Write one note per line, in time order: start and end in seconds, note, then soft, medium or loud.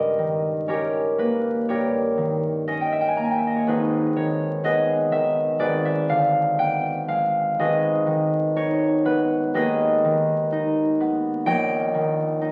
0.00 1.68 G2 medium
0.00 0.66 C#4 soft
0.00 0.68 G4 medium
0.00 0.68 A#4 medium
0.00 2.66 D#5 medium
0.18 2.16 D#3 soft
0.68 2.67 C#4 soft
0.68 1.69 G4 medium
0.68 1.69 A#4 medium
0.68 1.67 C#5 medium
1.18 3.16 A#3 soft
1.18 2.02 B4 medium
1.69 3.71 G2 soft
1.69 3.71 G4 medium
1.69 3.71 A#4 medium
1.69 3.55 C#5 medium
2.17 3.70 D#3 soft
2.68 3.71 C#4 soft
2.68 2.91 D#5 medium
2.81 3.00 G5 medium
2.92 3.08 E5 medium
3.01 3.14 G5 medium
3.08 3.20 G#5 medium
3.16 3.70 A#3 soft
3.16 3.28 A#5 medium
3.24 3.36 G#5 medium
3.31 3.44 G5 medium
3.38 3.53 E5 medium
3.47 3.63 D#5 medium
3.56 3.73 C#5 soft
3.67 5.58 G#1 medium
3.67 5.66 D#4 soft
3.67 4.64 G#4 medium
3.67 4.64 B4 medium
4.16 5.11 D#3 soft
4.16 4.98 C#5 medium
4.64 6.57 B3 medium
4.64 5.59 G#4 medium
4.64 5.59 B4 medium
4.64 5.65 D#5 medium
5.11 5.64 D#3 soft
5.11 5.84 E5 medium
5.59 7.58 G#1 medium
5.59 7.59 G#4 medium
5.59 7.60 B4 medium
5.59 7.61 D5 medium
5.85 6.27 E5 medium
6.09 7.62 D3 medium
6.09 7.07 F5 medium
6.58 9.04 B3 medium
6.58 7.43 G5 medium
7.08 10.98 G#3 soft
7.08 7.61 F5 medium
7.59 11.49 G#1 medium
7.59 9.56 G#4 medium
7.59 9.04 B4 medium
7.59 9.54 D#5 medium
8.06 10.03 D#3 medium
8.56 10.51 D#4 medium
8.56 9.41 C#5 medium
9.05 10.99 B3 medium
9.05 9.55 B4 medium
9.54 11.51 D#2 medium
9.54 11.52 G#4 medium
9.54 11.51 B4 medium
9.54 11.46 D#5 medium
10.04 11.51 D#3 medium
10.52 12.40 D#4 medium
11.00 11.50 B3 medium
11.46 12.52 A#1 medium
11.46 12.52 C#5 medium
11.46 12.52 D#5 medium
11.46 12.52 G5 loud
11.94 12.52 D#3 medium
12.41 12.52 D#4 medium